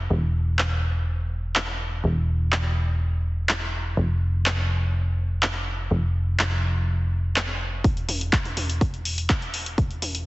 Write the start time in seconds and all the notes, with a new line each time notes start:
0.10 E1
0.59 clap
1.55 clap
2.04 E1
2.52 clap
3.49 clap
3.97 F1
4.46 clap
5.42 clap
5.91 F1
6.39 clap
7.36 clap
7.84 E1, kick, closed hi-hat
7.97 closed hi-hat
8.09 mid tom, open hi-hat
8.21 closed hi-hat
8.33 kick, clap, closed hi-hat
8.45 closed hi-hat, mid tom
8.57 mid tom, open hi-hat
8.70 closed hi-hat
8.81 kick, closed hi-hat
8.94 closed hi-hat
9.05 open hi-hat
9.18 closed hi-hat
9.30 kick, clap, closed hi-hat
9.42 closed hi-hat
9.54 open hi-hat
9.66 closed hi-hat
9.78 E1, kick, closed hi-hat
9.91 closed hi-hat
10.02 mid tom, open hi-hat
10.15 closed hi-hat